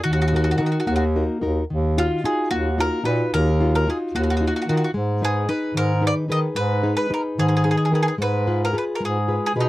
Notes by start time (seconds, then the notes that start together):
0.04 D#2 D#3 F#4
0.13 F#4
0.22 F#4
0.28 F#4
0.33 D#4 F#4 A#4
0.44 F#4
0.51 F#4
0.58 D#3 D#4 F#4 A#4
0.66 F#4
0.72 F#4
0.80 F#4
0.87 D#2 A#3 F#4
0.96 F#4
1.16 D#4 F#4 A#4
1.41 D#2 D#4 F#4 A#4
1.70 D#2 D#3
1.97 D#4 F4 F#4
2.24 D#4 F4 F#4 G#4
2.51 D#2 A#3 F#4
2.78 D#4 F4 F#4 A#4
3.04 A#2 D#4 F4 F#4 B4
3.33 D#2 D#3 A#4
3.61 D#4 F4 F#4
3.75 A#4
3.87 D#4 F4 F#4 G#4
4.13 D#2 A#3 F#4
4.24 F#4
4.30 F#4
4.37 D#4 F#4
4.41 F4 F#4
4.47 F#4
4.56 F#4
4.62 F#4
4.67 D#3 D#4 F4 F#4
4.77 F#4
4.84 F#4
4.94 G#2 G#3
5.22 D#4 G#4 B4
5.49 D#4 G#4 B4
5.74 G#2 D#3 A#4
6.01 D#4 G#4 B4
6.07 D5
6.28 D#3 D#4 G#4 B4 D#5
6.55 G#2 G#3 B4
6.83 D#4 G#4 B4
6.97 B4
7.10 D#4 G#4 A#4 B4
7.37 G#2 D#3 G#4
7.49 G#4
7.57 G#4
7.64 D#4 G#4 B4
7.71 G#4
7.77 G#4
7.85 G#4
7.91 D#3 D#4 G#4 B4
7.95 G#4
8.03 G#4
8.08 G#4
8.18 G#2 G#3 B4
8.47 F4 G#4 B4
8.65 A#4
8.73 F4 G#4 B4
8.78 B4
8.95 A#4
9.00 G#2 G#3
9.05 G#4
9.28 F4 G#4 B4
9.46 G#4
9.56 B2 F4 G#4 B4
9.60 D#4